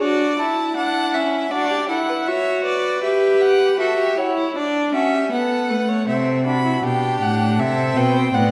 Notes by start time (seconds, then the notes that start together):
0.01 D4 F#4 D5
0.39 E4 A5
0.77 D4 F#5
1.14 C#4 E5
1.51 D4 F#4 D5
1.71 G4
1.89 E4 A4 F#5
2.08 B4
2.27 F#4 C#5 E5
2.65 B4 D5
3.04 G4 E5
3.42 F#5
3.79 F#4 A4 E5
3.99 G4
4.18 E4 F#4 C#5
4.37 E4
4.56 D4 D5
4.94 C#4 F#4 E5
5.13 G4
5.32 B3 A4 F#5
5.70 A3 B4
5.89 C#5
6.07 C3 C4 A4 E5
6.46 D4 F#4 B5
6.66 E4
6.84 B2 D4 G4 G5
7.22 A2 F#5
7.59 C3 C4 A4 E5
7.97 B2 B4 G5
8.16 C5
8.34 A2 B3 D5 F#5